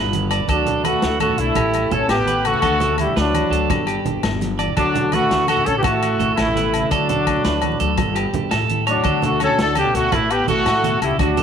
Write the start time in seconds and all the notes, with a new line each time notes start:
Already playing: G1 G3 D4 B4
0.04 low conga
0.13 D3, closed hi-hat, high conga, low conga
0.31 B4 D5, closed hi-hat, low agogo
0.40 low conga
0.48 D2 F#3 D4 F#4 A4, muted clean electric guitar stroke, kick, closed hi-hat, high conga, low agogo
0.66 F#4, closed hi-hat, low conga
0.84 A3 F#4 A4 B4, closed hi-hat, high conga, low conga, low agogo
0.93 low conga
1.02 D2 D4, snare, closed hi-hat
1.20 A2 A3 F#4 A4, closed hi-hat, high conga, low agogo
1.29 low conga
1.38 B1 A3 D4 E4 A4, closed hi-hat
1.55 A1 A2 G4, kick, closed hi-hat, high conga, low conga, low agogo
1.73 G3, closed hi-hat, low agogo
1.82 A3
1.91 A1 A3 C#4 A4 C#5, closed hi-hat, high conga, low conga
2.08 A1 A2 B3 G4 B4, snare, closed hi-hat, low agogo
2.18 low conga
2.27 B4, muted clean electric guitar stroke, closed hi-hat, high conga, low conga
2.44 C#3 A3 F#4 A4, closed hi-hat, low conga, low agogo
2.54 low conga
2.62 D2 D3 A3 D4 A4, kick, closed hi-hat, high conga, low agogo
2.80 D4 A4, closed hi-hat, low conga
2.98 G3 A3 E4 G4, closed hi-hat, high conga, low conga, low agogo
3.07 low conga
3.16 D2 D3 F#3 D4 F#4 B4, snare, closed hi-hat
3.34 E3, closed hi-hat, high conga, low agogo
3.50 D2 F#3 A4, closed hi-hat
3.70 G1 G3 D4 G4 B4, kick, closed hi-hat, high conga, low conga, low agogo
3.87 G4 B4, closed hi-hat, low agogo
4.05 G1 D4, closed hi-hat, high conga, low conga
4.23 G1 G3, snare, closed hi-hat, low agogo
4.33 low conga
4.41 F#3, snare, closed hi-hat, high conga, low conga
4.58 E3 D5, closed hi-hat, low agogo
4.68 low conga
4.77 D2 D3 F#3 A3 D4 F#4 A4, muted clean electric guitar stroke, kick, closed hi-hat, high conga, low agogo
4.95 F#4, closed hi-hat, low conga
5.12 A3 F#4 A4 B4, closed hi-hat, high conga, low conga, low agogo
5.22 low conga
5.31 D2 D4, snare, closed hi-hat
5.47 A2 A3 F#4 A4, closed hi-hat, high conga, low agogo
5.57 low conga
5.65 A#1 C#4 F#4 A4 C#5, closed hi-hat
5.77 G4 B4
5.82 A1 A2 A3 E4 F#4 A4, kick, closed hi-hat, high conga, low conga, low agogo
6.02 E4, closed hi-hat, low agogo
6.19 A1 A3 A4, closed hi-hat, high conga, low conga
6.35 A1 A2 A3 E4 A4, snare, closed hi-hat, low agogo
6.47 low conga
6.56 B2 B4, snare, closed hi-hat, high conga, low conga
6.73 C#3, closed hi-hat, low conga, low agogo
6.82 low conga
6.90 D2 D3 F#3 D4 F#4 A4, kick, closed hi-hat, high conga, low agogo
7.09 F#4 A4, closed hi-hat, low conga
7.27 A3, kick, closed hi-hat, high conga, low agogo
7.36 low conga
7.44 D2 D3 B4, snare, closed hi-hat
7.62 E3, closed hi-hat, high conga, low agogo
7.72 low conga
7.80 D2 F#3 A4, closed hi-hat, low conga
7.97 G1 G3, kick, closed hi-hat, high conga, low conga, low agogo
8.15 G4 B4, closed hi-hat, low agogo
8.33 G1 D4, closed hi-hat, high conga, low conga
8.51 A1 A2 A4, snare, closed hi-hat, low conga, low agogo
8.61 low conga
8.69 E4, closed hi-hat, high conga
8.79 low conga
8.87 F#3 A3 D4 F#4 C#5, closed hi-hat, low agogo
8.96 low conga
9.04 D2 D3 D4 F#4 A4, kick, closed hi-hat, high conga, low agogo
9.22 A3 D4 F#4 A4, closed hi-hat, low conga
9.40 A3 C#4 F#4 A4 C#5, closed hi-hat, high conga, low agogo
9.49 low conga
9.58 D2 D3 D4 A4 D5, snare, closed hi-hat
9.75 C#3 B3 G4 A4 B4, closed hi-hat, high conga, low agogo
9.85 low conga
9.94 D2 B2 A3 F#4 A4, closed hi-hat
10.12 A1 A2 A3 E4 A4 B4, kick, closed hi-hat, high conga, low conga, low agogo
10.30 B3 G4 B4, muted clean electric guitar stroke, closed hi-hat, low conga, low agogo
10.48 A1 A3 E4 F#4 A4, closed hi-hat, high conga, low conga
10.66 A2, snare, closed hi-hat, low agogo
10.84 B2 A4, closed hi-hat, high conga
11.01 C#2 C#3 G3 E4 G4, closed hi-hat, low agogo
11.11 low conga
11.19 D2 D3 F#3 D4 F#4 A4, kick, closed hi-hat, high conga, low agogo
11.37 A4, closed hi-hat, low conga